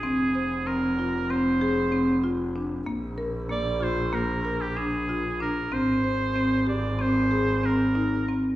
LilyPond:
<<
  \new Staff \with { instrumentName = "Oboe" } { \time 9/8 \key bes \mixolydian \tempo 4. = 63 aes'4 bes'4 c''4. r4 | r4 d''8 c''8 bes'8. g'16 aes'4 bes'8 | c''4. d''8 c''4 bes'4 r8 | }
  \new Staff \with { instrumentName = "Marimba" } { \time 9/8 \key bes \mixolydian c'8 c''8 c'8 f'8 c'8 aes'8 c'8 f'8 d'8 | bes8 bes'8 bes8 f'8 bes8 bes'8 d'8 f'8 d'8 | c'8 c''8 c'8 g'8 c'8 aes'8 c'8 ees'8 c'8 | }
  \new Staff \with { instrumentName = "Double bass" } { \clef bass \time 9/8 \key bes \mixolydian f,,1~ f,,8 | bes,,1~ bes,,8 | aes,,1~ aes,,8 | }
>>